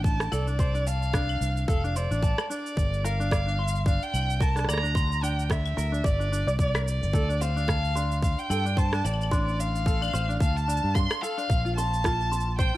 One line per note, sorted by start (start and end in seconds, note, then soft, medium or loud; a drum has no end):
0.00 0.29 A1 medium
0.00 0.31 D4 medium
0.04 0.34 A5 loud
0.04 kick loud
0.04 shaker soft
0.20 cross-stick medium
0.20 shaker soft
0.32 1.38 C2 medium
0.32 0.45 A4 loud
0.32 0.89 D5 loud
0.32 claves medium
0.32 shaker medium
0.47 0.58 D4 medium
0.47 shaker soft
0.59 0.74 C5 medium
0.59 kick loud
0.59 shaker soft
0.74 0.86 D4 medium
0.74 shaker soft
0.87 1.68 F5 loud
0.87 1.13 A5 medium
0.87 shaker medium
1.02 shaker soft
1.13 1.67 D4 medium
1.13 kick loud
1.13 cross-stick medium
1.13 shaker soft
1.29 claves medium
1.29 shaker soft
1.41 1.64 C2 medium
1.41 shaker medium
1.57 shaker soft
1.68 2.06 F1 medium
1.68 1.82 A4 loud
1.68 1.97 F5 medium
1.68 kick loud
1.68 shaker soft
1.84 1.94 D4 medium
1.84 shaker soft
1.96 2.10 C5 medium
1.96 2.49 D5 loud
1.96 shaker medium
2.11 2.33 A1 medium
2.11 2.22 D4 medium
2.11 shaker soft
2.23 2.49 A5 medium
2.23 kick loud
2.23 shaker soft
2.38 cross-stick medium
2.38 claves medium
2.38 shaker soft
2.50 2.77 D4 medium
2.50 3.06 D5 loud
2.50 shaker medium
2.66 shaker soft
2.77 3.97 G1 loud
2.77 kick loud
2.77 shaker soft
2.94 shaker soft
3.04 3.18 A#4 loud
3.04 3.86 F5 loud
3.04 shaker medium
3.20 3.30 D4 medium
3.20 shaker soft
3.31 3.46 D5 medium
3.31 kick loud
3.31 cross-stick medium
3.31 shaker soft
3.46 3.58 D4 medium
3.46 shaker soft
3.59 3.85 C6 medium
3.68 shaker medium
3.75 shaker soft
3.86 4.40 D4 medium
3.86 4.04 F5 medium
3.86 kick loud
3.86 shaker soft
4.03 4.43 G5 loud
4.03 shaker soft
4.14 4.65 C2 medium
4.14 claves medium
4.14 shaker medium
4.16 claves soft
4.23 claves soft
4.27 claves soft
4.27 shaker soft
4.40 4.54 A#4 loud
4.40 4.68 A5 loud
4.40 kick loud
4.40 shaker soft
4.56 4.67 D4 medium
4.56 cross-stick soft
4.56 shaker soft
4.59 cross-stick soft
4.64 5.74 D2 medium
4.64 4.83 D5 medium
4.64 cross-stick medium
4.69 5.25 A#5 loud
4.69 cross-stick medium
4.69 claves medium
4.69 shaker medium
4.74 cross-stick medium
4.78 cross-stick medium
4.83 4.94 D4 medium
4.83 shaker soft
4.95 5.21 C6 medium
4.95 kick loud
4.95 shaker soft
5.12 shaker soft
5.23 5.76 D4 medium
5.23 5.52 G5 medium
5.23 shaker medium
5.39 shaker soft
5.50 6.07 E5 medium
5.50 kick loud
5.50 cross-stick medium
5.50 shaker soft
5.66 claves medium
5.66 shaker soft
5.77 6.01 D2 medium
5.77 5.91 A#4 loud
5.77 shaker medium
5.92 6.03 D4 medium
5.92 shaker soft
6.04 6.43 G1 medium
6.04 6.19 D5 medium
6.04 6.59 D5 loud
6.04 kick loud
6.04 shaker soft
6.19 6.31 D4 medium
6.19 shaker soft
6.32 6.46 D4 medium
6.32 shaker medium
6.46 7.03 C2 medium
6.46 6.58 D5 loud
6.46 shaker soft
6.59 6.73 D5 loud
6.59 6.84 D5 loud
6.59 kick loud
6.59 shaker soft
6.74 6.85 A#4 medium
6.74 cross-stick medium
6.74 claves medium
6.74 shaker soft
6.87 7.42 D5 loud
6.87 shaker medium
7.01 7.11 G1 loud
7.01 shaker soft
7.13 8.34 D2 medium
7.13 7.27 A4 loud
7.13 kick loud
7.13 shaker soft
7.29 7.40 D4 medium
7.29 shaker soft
7.41 7.55 C5 medium
7.41 8.22 F5 loud
7.41 7.67 F5 medium
7.41 shaker medium
7.56 7.68 D4 medium
7.56 shaker soft
7.68 7.94 A5 medium
7.68 kick loud
7.68 cross-stick medium
7.68 shaker soft
7.85 shaker soft
7.95 8.49 D4 medium
7.95 8.21 C6 medium
7.95 shaker medium
8.12 shaker soft
8.22 8.41 F5 medium
8.22 kick loud
8.22 shaker soft
8.39 8.80 G5 loud
8.39 shaker soft
8.50 9.01 G2 medium
8.50 8.64 A4 loud
8.50 8.76 G5 medium
8.50 claves medium
8.50 shaker medium
8.65 8.76 D4 medium
8.65 shaker soft
8.77 8.92 C5 medium
8.77 9.06 A5 loud
8.77 kick loud
8.77 shaker soft
8.92 9.04 D4 medium
8.92 cross-stick medium
8.92 shaker soft
9.04 10.10 A1 medium
9.04 9.61 D5 loud
9.04 9.31 A5 medium
9.04 claves soft
9.04 shaker medium
9.14 claves soft
9.21 claves medium
9.21 shaker soft
9.31 9.85 D4 medium
9.31 9.49 C6 medium
9.31 kick loud
9.31 shaker soft
9.48 shaker soft
9.59 10.41 F5 loud
9.59 shaker medium
9.75 shaker soft
9.86 10.00 A4 loud
9.86 kick loud
9.86 shaker soft
10.01 10.12 D4 medium
10.01 claves medium
10.01 shaker soft
10.05 claves medium
10.08 claves medium
10.11 10.37 A1 medium
10.11 10.28 C5 medium
10.11 10.30 F6 medium
10.11 claves soft
10.14 claves soft
10.14 shaker medium
10.18 claves soft
10.26 10.40 D4 medium
10.26 claves soft
10.30 shaker soft
10.40 10.79 D2 medium
10.40 10.58 F5 loud
10.40 10.67 A5 medium
10.40 kick loud
10.40 shaker soft
10.56 10.96 A5 loud
10.56 shaker soft
10.68 11.21 D4 medium
10.68 shaker medium
10.77 shaker soft
10.84 11.06 G2 medium
10.95 11.13 F5 loud
10.95 11.23 C6 loud
10.95 kick loud
10.95 shaker soft
11.11 cross-stick medium
11.11 claves medium
11.11 shaker soft
11.22 11.36 A4 loud
11.22 11.76 F5 loud
11.22 shaker medium
11.38 11.48 D4 medium
11.38 shaker soft
11.49 12.70 A#1 medium
11.49 11.64 F5 medium
11.49 kick loud
11.49 shaker soft
11.65 11.76 F4 medium
11.65 shaker soft
11.77 12.04 F5 medium
11.77 12.55 A5 loud
11.77 12.03 C6 medium
11.77 shaker medium
11.94 shaker soft
12.04 12.58 F4 medium
12.04 kick medium
12.04 cross-stick medium
12.04 shaker soft
12.21 shaker soft
12.32 12.58 C6 medium
12.32 shaker medium
12.40 shaker soft
12.59 12.73 C5 loud
12.59 12.77 G5 loud
12.59 kick loud
12.59 shaker soft